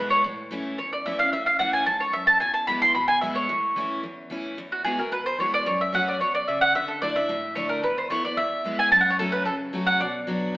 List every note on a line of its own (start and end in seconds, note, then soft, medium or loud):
0.00 0.22 B2 medium
0.00 0.23 E3 medium
0.00 0.23 G#3 medium
0.00 0.24 B3 loud
0.00 0.24 E4 loud
0.10 0.23 C#5 medium
0.24 0.76 A2 medium
0.51 0.77 E3 medium
0.51 0.78 A3 loud
0.51 0.78 C#4 loud
0.51 0.78 E4 loud
0.78 1.30 E2 medium
0.78 0.92 C#5 medium
0.93 1.06 D5 medium
1.05 1.19 E3 medium
1.05 1.20 A3 medium
1.05 1.20 C#4 medium
1.05 1.18 E4 loud
1.05 1.19 E5 medium
1.19 1.34 C#4 soft
1.19 1.32 E4 medium
1.19 1.32 F5 loud
1.33 1.85 A2 medium
1.33 1.46 E5 medium
1.46 1.59 F5 medium
1.59 1.85 E3 loud
1.59 1.86 A3 medium
1.59 1.86 C#4 loud
1.59 1.86 E4 loud
1.59 1.73 F#5 medium
1.73 1.86 G#5 medium
1.86 2.13 G#2 medium
1.86 2.00 A5 medium
2.00 2.14 C#5 medium
2.13 2.40 F#2 medium
2.13 2.27 E5 medium
2.27 2.40 A5 loud
2.40 2.93 E2 loud
2.40 2.53 G#5 medium
2.54 2.67 A5 medium
2.67 2.82 E3 loud
2.67 2.82 G#3 medium
2.67 2.82 B3 loud
2.67 2.81 E4 loud
2.67 2.81 B5 medium
2.82 2.96 B3 soft
2.82 2.95 E4 medium
2.82 2.94 C6 loud
2.95 3.47 B2 medium
2.95 3.07 B5 medium
3.08 3.21 G#5 medium
3.21 3.48 E3 medium
3.21 3.49 G#3 medium
3.21 3.49 B3 loud
3.21 3.49 E4 loud
3.21 3.35 E5 medium
3.35 3.99 C#5 medium
3.49 4.01 A2 medium
3.76 4.02 E3 medium
3.76 4.03 A3 medium
3.76 4.03 C#4 loud
3.76 4.03 E4 loud
4.04 4.55 E2 medium
4.30 4.56 E3 medium
4.30 4.57 A3 medium
4.30 4.57 C#4 medium
4.30 4.57 E4 medium
4.58 5.10 E2 medium
4.72 4.84 F#4 medium
4.84 4.98 E3 loud
4.84 4.99 G#3 medium
4.84 4.99 B3 loud
4.84 4.97 F#4 loud
4.84 4.98 G#4 medium
4.98 5.12 B3 soft
4.98 5.11 F#4 medium
4.98 5.12 A#4 medium
5.12 5.64 B2 medium
5.12 5.26 B4 medium
5.26 5.39 C5 medium
5.38 5.65 E3 medium
5.38 5.65 G#3 medium
5.38 5.66 B3 medium
5.38 5.66 F#4 medium
5.38 5.53 C#5 medium
5.54 5.66 D5 loud
5.66 6.18 F#2 medium
5.66 5.80 C#5 medium
5.81 5.94 E5 medium
5.93 6.19 F#3 loud
5.93 6.19 A3 medium
5.93 6.20 C#4 medium
5.93 6.20 F#4 loud
5.93 6.08 F#5 loud
6.08 6.20 D5 medium
6.21 6.47 B2 medium
6.21 6.34 C#5 medium
6.35 6.47 D5 loud
6.48 6.74 C#3 medium
6.48 6.61 E5 medium
6.61 6.74 F#5 loud
6.75 7.01 D3 medium
6.75 6.89 E5 medium
6.88 7.01 A4 medium
7.02 7.15 D3 medium
7.02 7.16 A3 medium
7.02 7.16 D4 loud
7.02 7.14 E4 loud
7.02 7.15 D5 medium
7.15 7.30 D4 medium
7.15 7.28 E4 medium
7.15 7.53 E5 medium
7.29 7.81 A2 medium
7.55 7.82 D3 medium
7.55 7.82 A3 medium
7.55 7.82 D4 loud
7.55 7.83 E4 medium
7.55 7.69 C#5 medium
7.69 7.83 A#4 medium
7.83 8.35 E2 medium
7.83 7.97 B4 medium
7.98 8.10 C5 medium
8.10 8.24 E3 medium
8.10 8.24 A3 loud
8.10 8.24 B3 loud
8.10 8.23 E4 loud
8.10 8.24 C#5 medium
8.24 8.38 B3 soft
8.24 8.37 E4 medium
8.24 8.37 D5 medium
8.37 8.89 E2 medium
8.37 8.75 E5 medium
8.64 8.90 E3 medium
8.64 8.91 G#3 medium
8.64 8.91 B3 medium
8.64 8.91 E4 medium
8.79 8.91 G#5 loud
8.92 9.44 F#2 loud
8.92 9.00 A5 loud
9.01 9.09 F#5 medium
9.10 9.19 C#5 medium
9.19 9.45 F#3 medium
9.19 9.45 A3 loud
9.19 9.46 C#4 loud
9.19 9.46 F#4 loud
9.19 9.32 A4 medium
9.32 9.45 B4 medium
9.45 9.98 C#3 medium
9.45 9.54 A4 medium
9.73 9.99 F#3 medium
9.73 9.99 A3 medium
9.73 9.99 C#4 medium
9.73 10.00 F#4 loud
9.87 10.00 F#5 loud
10.00 10.52 B2 medium
10.00 10.14 D5 medium
10.27 10.53 F#3 medium
10.27 10.54 B3 loud
10.27 10.54 D4 loud
10.27 10.54 F#4 loud